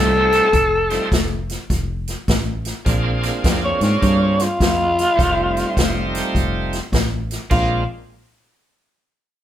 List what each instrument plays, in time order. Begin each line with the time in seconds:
Already playing: fingered electric bass C2, tonewheel organ G3 A3 C4 D#4 F4, tenor saxophone A4
0.32 snare, closed hi-hat
0.53 fingered electric bass F1, kick, closed hi-hat
0.90 tonewheel organ G3 A3 C4 D#4 F4, snare, closed hi-hat
1.12 fingered electric bass F1, kick, snare, closed hi-hat
1.49 snare, closed hi-hat
1.70 fingered electric bass F1, kick, snare, closed hi-hat
2.08 snare, closed hi-hat
2.28 fingered electric bass A1, kick, snare, closed hi-hat
2.65 snare, closed hi-hat
2.85 fingered electric bass A#1, tonewheel organ A#3 C4 D4 F4 G#4, kick, closed hi-hat
3.23 snare, closed hi-hat
3.44 fingered electric bass F2, kick, snare, closed hi-hat
3.65 tenor saxophone C#5
3.81 fingered electric bass G#2, tenor saxophone C#5, snare, closed hi-hat
4.02 fingered electric bass G2, tenor saxophone C#5, kick, snare, closed hi-hat
4.22 tenor saxophone C#5
4.40 tenor saxophone F4, snare, closed hi-hat
4.60 fingered electric bass F2, kick, snare, closed hi-hat
4.99 snare, closed hi-hat
5.16 fingered electric bass F1, tonewheel organ G3 A3 C4 D#4 F4, kick, closed hi-hat
5.21 snare
5.57 snare, closed hi-hat
5.77 fingered electric bass F1, kick, snare, closed hi-hat
6.15 snare, closed hi-hat
6.34 fingered electric bass F1, kick, closed hi-hat
6.73 snare, closed hi-hat
6.92 fingered electric bass A1, kick, snare, closed hi-hat
7.31 snare, closed hi-hat
7.50 fingered electric bass A#1, tonewheel organ G#3 A#3 C4 D4 F4, tenor saxophone F4, kick, crash